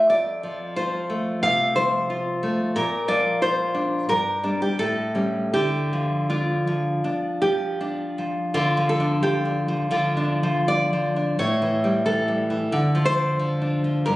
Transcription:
0.00 0.10 A3 medium
0.00 0.11 F4 medium
0.10 1.39 F2 medium
0.10 0.74 D5 loud
0.43 1.43 F3 medium
0.76 1.77 F4 medium
0.76 1.40 C5 loud
1.10 2.09 A3 medium
1.43 2.42 C3 medium
1.43 1.75 F5 loud
1.76 2.76 F3 medium
1.76 2.71 C5 loud
2.10 2.76 F4 medium
2.43 2.76 A3 medium
2.76 4.06 A#2 medium
2.76 3.08 A#4 loud
3.08 4.09 F3 medium
3.08 3.41 D5 loud
3.42 4.10 F4 medium
3.42 4.07 C5 medium
3.75 4.09 D4 medium
4.09 4.78 G2 medium
4.09 4.60 A#4 loud
4.44 4.76 G3 medium
4.44 4.76 D4 medium
4.62 4.79 G4 medium
4.79 5.52 A2 medium
4.79 5.51 A4 loud
5.15 5.50 G3 soft
5.15 5.50 C#4 soft
5.54 7.01 D3 medium
5.54 6.28 G4 medium
5.93 6.66 F3 medium
6.30 7.03 D4 medium
6.30 8.13 F4 medium
6.67 7.41 F3 soft
7.04 7.79 D4 medium
7.42 8.17 F3 medium
7.42 8.50 G4 medium
7.81 8.55 D4 medium
8.18 8.55 F3 soft
8.54 9.86 D3 medium
8.54 8.88 F4 loud
8.77 9.21 F3 medium
8.89 9.22 A4 medium
9.00 9.44 D4 medium
9.23 9.67 F3 medium
9.23 9.88 G4 medium
9.45 10.16 D4 medium
9.68 10.42 F3 medium
9.91 11.35 D3 medium
9.91 10.65 F4 loud
10.17 10.67 D4 medium
10.43 10.92 F3 medium
10.68 11.15 D4 medium
10.68 11.36 D5 loud
10.93 11.38 F3 medium
11.16 11.39 D4 medium
11.39 12.69 A2 medium
11.39 12.03 C#5 loud
11.62 12.05 E3 medium
11.84 12.27 G3 medium
12.06 12.49 E3 medium
12.06 13.02 A4 medium
12.28 12.73 G3 medium
12.50 12.73 E3 medium
12.72 14.03 D3 medium
12.95 13.38 F3 medium
13.05 14.03 C5 loud
13.18 13.60 D4 medium
13.39 13.83 F3 medium
13.62 14.07 D4 medium
13.84 14.07 F3 medium
14.06 14.16 G2 medium
14.06 14.16 A#4 medium

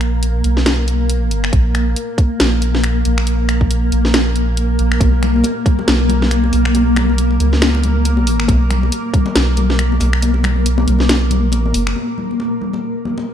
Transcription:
0.00 0.43 A#1 loud
0.00 11.95 A#3 medium
0.00 finger snap medium
0.00 closed hi-hat soft
0.23 closed hi-hat medium
0.44 1.51 B1 medium
0.44 closed hi-hat soft
0.57 snare soft
0.66 finger snap medium
0.66 snare loud
0.66 closed hi-hat medium
0.88 closed hi-hat soft
1.10 closed hi-hat medium
1.31 closed hi-hat medium
1.44 finger snap medium
1.53 1.95 A#1 loud
1.53 kick loud
1.53 closed hi-hat medium
1.75 finger snap medium
1.75 closed hi-hat soft
1.96 closed hi-hat medium
2.18 kick loud
2.18 closed hi-hat soft
2.40 3.04 A#1 medium
2.40 snare loud
2.40 closed hi-hat medium
2.62 closed hi-hat soft
2.75 snare soft
2.84 finger snap medium
2.84 closed hi-hat medium
3.05 3.91 A#1 loud
3.05 closed hi-hat medium
3.18 finger snap medium
3.27 closed hi-hat medium
3.49 finger snap medium
3.49 closed hi-hat soft
3.61 kick medium
3.71 closed hi-hat medium
3.92 4.77 A#1 medium
3.92 closed hi-hat soft
4.05 snare soft
4.14 finger snap medium
4.14 snare loud
4.14 closed hi-hat medium
4.36 closed hi-hat soft
4.57 closed hi-hat medium
4.79 4.99 A#1 loud
4.79 closed hi-hat soft
4.92 finger snap medium
5.01 5.43 B1 medium
5.01 kick loud
5.01 closed hi-hat medium
5.01 muted conga soft
5.01 high conga medium
5.23 finger snap medium
5.23 closed hi-hat soft
5.23 low conga medium
5.36 high conga medium
5.44 closed hi-hat medium
5.44 muted conga medium
5.66 kick loud
5.66 closed hi-hat soft
5.66 low conga medium
5.79 muted conga soft
5.79 high conga medium
5.88 6.51 B1 medium
5.88 snare loud
5.88 closed hi-hat medium
6.09 closed hi-hat soft
6.09 high conga medium
6.09 low conga medium
6.22 snare soft
6.22 muted conga medium
6.31 finger snap medium
6.31 closed hi-hat medium
6.44 high conga medium
6.53 7.38 B1 loud
6.53 open hi-hat medium
6.53 muted conga medium
6.65 finger snap medium
6.75 closed hi-hat medium
6.75 high conga medium
6.96 finger snap medium
6.96 closed hi-hat soft
6.96 muted conga medium
6.96 low conga medium
7.09 high conga medium
7.18 closed hi-hat medium
7.31 muted conga soft
7.40 8.47 C#2 medium
7.40 closed hi-hat medium
7.40 low conga medium
7.52 snare soft
7.52 high conga medium
7.62 finger snap medium
7.62 snare loud
7.62 closed hi-hat medium
7.75 muted conga medium
7.83 closed hi-hat medium
7.83 high conga medium
7.83 low conga medium
8.05 closed hi-hat medium
8.05 muted conga medium
8.17 high conga medium
8.27 open hi-hat loud
8.40 finger snap medium
8.48 8.91 B1 loud
8.48 kick loud
8.48 closed hi-hat medium
8.48 muted conga medium
8.48 high conga medium
8.71 finger snap medium
8.71 closed hi-hat soft
8.71 low conga medium
8.83 muted conga medium
8.83 high conga medium
8.92 closed hi-hat medium
9.14 kick medium
9.14 closed hi-hat medium
9.14 low conga medium
9.26 muted conga medium
9.26 high conga medium
9.35 9.99 B1 medium
9.35 snare loud
9.35 closed hi-hat medium
9.57 closed hi-hat medium
9.57 muted conga soft
9.57 high conga medium
9.57 low conga medium
9.70 snare soft
9.79 finger snap medium
9.79 closed hi-hat medium
9.92 high conga medium
10.00 10.86 B1 loud
10.00 open hi-hat medium
10.00 muted conga medium
10.13 finger snap medium
10.22 closed hi-hat medium
10.22 high conga medium
10.34 muted conga medium
10.44 finger snap medium
10.44 closed hi-hat medium
10.44 low conga medium
10.56 high conga medium
10.66 closed hi-hat medium
10.78 muted conga medium
10.88 11.48 B1 loud
10.88 closed hi-hat medium
10.88 low conga medium
10.99 snare soft
10.99 high conga medium
11.09 finger snap medium
11.09 snare loud
11.09 closed hi-hat medium
11.09 muted conga medium
11.31 closed hi-hat medium
11.31 high conga medium
11.31 low conga loud
11.48 11.73 A#1 loud
11.52 closed hi-hat medium
11.52 muted conga medium
11.66 high conga medium
11.74 11.95 F#1 loud
11.74 open hi-hat loud
11.87 finger snap medium
11.87 muted conga soft
11.96 13.34 A#3 medium
11.96 muted conga soft
11.96 high conga medium
12.18 low conga medium
12.31 high conga medium
12.40 muted conga medium
12.61 low conga medium
12.73 muted conga soft
12.73 high conga medium
13.05 high conga medium
13.05 low conga medium
13.18 muted conga medium

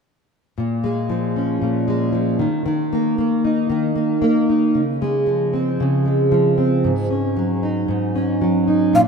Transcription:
0.58 1.60 A#2 medium
0.84 1.87 G#3 soft
1.10 2.11 F3 medium
1.36 2.46 C#4 soft
1.62 2.46 A#2 medium
1.88 2.46 G#3 soft
2.12 2.39 F3 soft
2.39 2.64 D#3 medium
2.66 3.68 D#3 medium
2.93 3.17 A#3 medium
3.18 3.94 A#3 medium
3.45 4.48 D#4 soft
3.70 4.81 D#3 medium
3.96 4.21 A#3 medium
4.22 4.81 A#3 medium
4.49 4.81 D#4 soft
4.75 5.79 C#3 medium
5.02 6.05 G#3 soft
5.27 6.30 F3 medium
5.53 6.57 C4 soft
5.80 6.91 C#3 medium
6.06 7.10 G#3 soft
6.32 6.90 F3 medium
6.58 6.90 C4 soft
6.84 7.87 G#2 medium
7.10 8.15 C#4 soft
7.37 8.40 F#3 medium
7.63 8.67 D#4 soft
7.88 8.99 G#2 medium
8.16 9.00 C#4 medium
8.41 9.00 F#3 medium
8.68 9.00 D#4 soft
8.93 9.08 A#2 medium
8.93 9.01 F5 medium

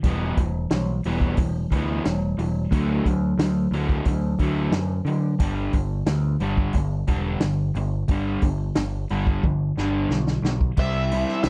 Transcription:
0.03 0.32 E1 medium
0.03 0.37 E3 medium
0.03 0.37 G3 medium
0.03 0.37 B3 medium
0.03 kick medium
0.03 open hi-hat medium
0.37 0.65 E1 medium
0.37 0.69 E3 medium
0.37 0.69 G3 medium
0.37 kick medium
0.37 open hi-hat soft
0.71 1.00 B1 medium
0.71 1.02 E3 medium
0.71 1.02 G3 medium
0.71 snare loud
0.71 open hi-hat medium
1.04 1.33 E1 medium
1.04 1.37 E3 medium
1.04 1.37 G3 medium
1.04 1.38 B3 medium
1.04 open hi-hat soft
1.21 kick medium
1.37 1.65 E1 medium
1.37 1.69 E3 medium
1.37 1.69 G3 medium
1.37 kick loud
1.37 open hi-hat medium
1.71 1.99 D2 medium
1.71 2.04 E3 medium
1.71 2.04 G3 medium
1.71 2.04 B3 medium
1.71 kick medium
1.71 open hi-hat soft
2.05 2.33 E1 medium
2.05 2.36 E3 medium
2.05 2.36 G3 medium
2.05 snare medium
2.05 open hi-hat medium
2.38 2.66 E1 medium
2.38 2.69 E3 medium
2.38 2.69 G3 medium
2.38 open hi-hat medium
2.71 2.99 D2 medium
2.71 3.04 D3 medium
2.71 3.04 F#3 medium
2.71 3.05 A3 medium
2.71 kick medium
2.71 open hi-hat medium
3.05 3.33 D2 medium
3.05 3.36 D3 medium
3.05 3.37 F#3 medium
3.05 kick medium
3.05 open hi-hat soft
3.38 3.66 D2 medium
3.38 3.70 D3 medium
3.38 3.70 F#3 medium
3.38 snare loud
3.38 open hi-hat medium
3.71 4.00 D2 medium
3.71 4.05 D3 medium
3.71 4.05 F#3 medium
3.71 4.06 A3 medium
3.71 open hi-hat soft
3.89 kick medium
4.05 4.34 D2 medium
4.05 4.38 D3 medium
4.05 4.38 F#3 medium
4.05 kick medium
4.05 open hi-hat medium
4.39 4.67 D2 medium
4.39 4.72 D3 medium
4.39 4.72 F#3 medium
4.39 4.72 A3 medium
4.39 kick medium
4.39 open hi-hat soft
4.71 5.00 F#2 medium
4.71 5.05 D3 medium
4.71 5.05 F#3 medium
4.71 snare medium
4.71 open hi-hat medium
5.05 5.34 D3 medium
5.05 5.38 D3 medium
5.05 5.38 F#3 medium
5.05 open hi-hat soft
5.39 5.68 G1 medium
5.39 5.73 G2 medium
5.39 5.73 D3 medium
5.39 5.73 G3 loud
5.39 kick medium
5.39 open hi-hat medium
5.73 6.02 G1 medium
5.73 6.05 G2 medium
5.73 6.05 D3 medium
5.73 kick medium
5.73 open hi-hat soft
6.06 6.35 D2 medium
6.06 6.38 G2 medium
6.06 6.39 D3 medium
6.06 snare loud
6.06 open hi-hat medium
6.40 6.69 G1 medium
6.40 6.73 G2 medium
6.40 6.74 D3 medium
6.40 6.74 G3 medium
6.40 open hi-hat soft
6.57 kick medium
6.73 7.02 G1 medium
6.73 7.06 G2 medium
6.73 kick medium
6.73 open hi-hat medium
6.77 7.06 D3 medium
7.07 7.36 E1 medium
7.07 7.40 G2 medium
7.07 7.41 D3 medium
7.07 7.41 G3 medium
7.07 kick medium
7.07 open hi-hat soft
7.40 7.70 G1 medium
7.40 7.73 G2 medium
7.40 7.73 D3 medium
7.40 snare medium
7.40 open hi-hat medium
7.75 8.03 G1 medium
7.75 8.07 G2 medium
7.75 8.07 D3 medium
7.75 open hi-hat soft
8.08 8.36 G1 medium
8.08 8.42 G2 medium
8.08 8.42 D3 medium
8.08 8.42 G3 medium
8.08 kick loud
8.08 open hi-hat medium
8.42 8.71 G1 medium
8.42 8.73 G2 medium
8.42 8.74 D3 medium
8.42 kick medium
8.42 open hi-hat medium
8.75 9.04 G1 medium
8.75 9.07 G2 medium
8.75 9.07 D3 medium
8.75 snare loud
8.75 open hi-hat medium
9.09 9.39 G1 medium
9.09 9.42 G2 medium
9.09 9.42 D3 medium
9.09 9.42 G3 medium
9.09 open hi-hat soft
9.27 kick medium
9.43 9.71 G1 medium
9.43 9.75 G2 medium
9.43 9.75 D3 medium
9.43 kick medium
9.43 high tom soft
9.77 10.05 G1 medium
9.77 10.10 G2 medium
9.77 10.10 D3 medium
9.77 10.10 G3 medium
9.77 snare medium
10.09 10.38 B1 medium
10.09 10.42 G2 medium
10.09 10.42 D3 medium
10.09 snare medium
10.27 snare medium
10.42 10.71 B1 medium
10.42 10.76 G2 medium
10.42 snare medium
10.47 10.76 D3 medium
10.61 kick medium
10.77 11.24 C2 medium
10.77 11.12 C3 medium
10.77 11.13 G3 medium
10.77 11.13 C4 medium
10.77 11.43 E5 medium
10.77 kick medium
10.77 crash medium
10.81 11.13 E4 medium
11.11 11.46 C3 medium
11.11 11.46 G3 medium
11.11 11.46 C4 medium
11.11 11.47 E4 medium
11.11 open hi-hat medium
11.28 snare soft
11.43 11.49 C2 medium
11.43 11.49 C3 medium
11.43 11.49 G3 medium
11.43 11.49 E5 medium
11.43 snare loud
11.43 open hi-hat medium

